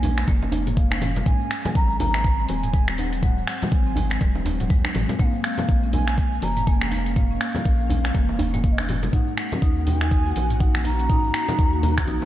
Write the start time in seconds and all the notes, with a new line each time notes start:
Already playing: A#1 G#3 A#3 C#4 G#5
0.03 open hi-hat, djembe bass, low conga
0.17 G#3, finger snap, closed hi-hat, djembe slap, shaker
0.28 F1 A#3, kick, closed hi-hat, high conga, shaker
0.42 djembe slap, high conga, shaker
0.52 open hi-hat, djembe slap, djembe tone, djembe bass
0.67 A#3, closed hi-hat, mid tom, high conga, shaker
0.76 A#3 F5, kick, closed hi-hat, shaker
0.91 C#4, finger snap, djembe slap, djembe tone, shaker
1.02 mid tom, open hi-hat, high conga
1.16 closed hi-hat, low conga, shaker
1.25 F#3 G#3 C4 G#5, kick, closed hi-hat, mid tom, djembe tone, shaker
1.40 shaker
1.51 finger snap, open hi-hat
1.65 F#3, closed hi-hat, high conga, low conga, shaker
1.75 G#1 G#3 A#5, kick, closed hi-hat, shaker
1.90 shaker
1.99 A#5, open hi-hat, djembe bass, low conga
2.14 G#3, finger snap, closed hi-hat, djembe slap, shaker
2.24 G#3, kick, closed hi-hat, shaker
2.39 C4, shaker
2.48 D#1 G#5, open hi-hat, high conga
2.63 closed hi-hat, mid tom, shaker
2.73 G#3, kick, closed hi-hat, shaker
2.88 finger snap, high conga, shaker
2.98 F#5, open hi-hat, djembe tone
3.13 F#3, closed hi-hat, shaker
3.22 G#3 F#5, kick, closed hi-hat, mid tom, shaker
3.38 shaker
3.47 F#5, finger snap, open hi-hat
3.62 G#3, closed hi-hat, high conga, low conga, shaker
3.71 G#1 G#3 G#5, kick, closed hi-hat, shaker
3.86 C4, shaker
3.96 open hi-hat, djembe bass, low conga
4.10 finger snap, closed hi-hat, djembe slap, shaker
4.21 D#1 G#3, kick, closed hi-hat, high conga, shaker
4.35 djembe slap, high conga, shaker
4.45 open hi-hat, djembe slap, djembe tone, djembe bass
4.60 D#1 F#3, closed hi-hat, mid tom, high conga, shaker
4.70 D#2 G#3, kick, closed hi-hat, shaker
4.84 finger snap, djembe slap, djembe tone, shaker
4.95 G#1, mid tom, open hi-hat, high conga
5.09 G#3, closed hi-hat, low conga, shaker
5.19 A#3 C#4 F#5, kick, closed hi-hat, mid tom, djembe tone, shaker
5.24 F5
5.34 shaker
5.44 F5, finger snap, open hi-hat
5.58 A#3, closed hi-hat, high conga, low conga, shaker
5.68 A#1 A#3, kick, closed hi-hat, shaker
5.83 C#4, shaker
5.93 G#5, open hi-hat, djembe bass, low conga
6.07 finger snap, closed hi-hat, djembe slap, shaker
6.18 A#3 G#5, kick, closed hi-hat, shaker
6.33 shaker
6.42 F1 A#5, open hi-hat, high conga
6.57 G#3, closed hi-hat, mid tom, shaker
6.67 A#3 G#5, kick, closed hi-hat, shaker
6.82 finger snap, high conga, shaker
6.91 F5, open hi-hat, djembe tone
7.06 A#3, closed hi-hat, shaker
7.16 A#3, kick, closed hi-hat, mid tom, shaker
7.31 C#4, shaker
7.41 finger snap, open hi-hat
7.55 closed hi-hat, high conga, low conga, shaker
7.65 A#1 A#3, kick, closed hi-hat, shaker
7.80 shaker
7.89 open hi-hat, low conga, djembe bass
8.04 G#3, finger snap, closed hi-hat, djembe slap, shaker
8.14 F1 A#3, kick, closed hi-hat, high conga, shaker
8.29 djembe slap, high conga, shaker
8.39 open hi-hat, djembe slap, djembe tone, djembe bass
8.54 A#3 G#5, closed hi-hat, mid tom, high conga, shaker
8.62 A#3 F5, kick, closed hi-hat, shaker
8.71 D#5
8.78 C#4 F5, finger snap, djembe slap, djembe tone, shaker
8.88 mid tom, open hi-hat, high conga
9.03 closed hi-hat, low conga, shaker
9.13 D#3 A#3 D#4 F#4 F#5, kick, closed hi-hat, mid tom, djembe tone, shaker
9.27 shaker
9.37 F#5, finger snap, open hi-hat
9.52 C#4, closed hi-hat, high conga, low conga, shaker
9.62 D#2 D#4, kick, closed hi-hat, shaker
9.77 shaker
9.86 G5, open hi-hat, djembe bass, low conga
9.98 D#4 G#5, finger snap, closed hi-hat, djembe slap, shaker
10.11 D#4, kick, closed hi-hat, shaker
10.26 F#4, shaker
10.36 A#1, open hi-hat, high conga
10.50 closed hi-hat, mid tom, shaker
10.60 D#4 F#5, kick, closed hi-hat, shaker
10.75 finger snap, high conga, shaker
10.84 A#5, open hi-hat, djembe tone
10.99 C#4, closed hi-hat, shaker
11.10 D#4, kick, closed hi-hat, mid tom, shaker
11.24 shaker
11.34 finger snap, open hi-hat
11.48 D#4, closed hi-hat, high conga, low conga, shaker
11.58 D#2 D#4, kick, closed hi-hat, shaker
11.73 F#4, shaker
11.83 open hi-hat, low conga, djembe bass
11.98 finger snap, kick, closed hi-hat, djembe slap, shaker
12.07 A#1 D#4, closed hi-hat, djembe tone, high conga, shaker
12.22 djembe slap, high conga